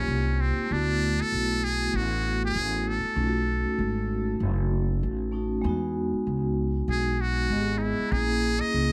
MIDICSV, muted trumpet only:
0, 0, Header, 1, 2, 480
1, 0, Start_track
1, 0, Key_signature, 4, "major"
1, 0, Tempo, 618557
1, 546, Time_signature, 4, 2, 24, 8
1, 6923, End_track
2, 0, Start_track
2, 0, Title_t, "Muted trumpet"
2, 0, Program_c, 0, 59
2, 0, Note_on_c, 0, 61, 100
2, 317, Note_on_c, 0, 60, 88
2, 328, Note_off_c, 0, 61, 0
2, 563, Note_on_c, 0, 62, 107
2, 575, Note_off_c, 0, 60, 0
2, 943, Note_on_c, 0, 69, 112
2, 955, Note_off_c, 0, 62, 0
2, 1272, Note_on_c, 0, 68, 104
2, 1284, Note_off_c, 0, 69, 0
2, 1522, Note_on_c, 0, 66, 94
2, 1533, Note_off_c, 0, 68, 0
2, 1898, Note_off_c, 0, 66, 0
2, 1903, Note_on_c, 0, 68, 110
2, 2237, Note_on_c, 0, 69, 87
2, 2249, Note_off_c, 0, 68, 0
2, 3432, Note_off_c, 0, 69, 0
2, 5356, Note_on_c, 0, 68, 94
2, 5592, Note_on_c, 0, 66, 99
2, 5604, Note_off_c, 0, 68, 0
2, 6038, Note_on_c, 0, 63, 60
2, 6050, Note_off_c, 0, 66, 0
2, 6068, Note_on_c, 0, 64, 86
2, 6080, Note_off_c, 0, 63, 0
2, 6302, Note_on_c, 0, 68, 106
2, 6314, Note_off_c, 0, 64, 0
2, 6678, Note_on_c, 0, 75, 111
2, 6689, Note_off_c, 0, 68, 0
2, 6923, Note_off_c, 0, 75, 0
2, 6923, End_track
0, 0, End_of_file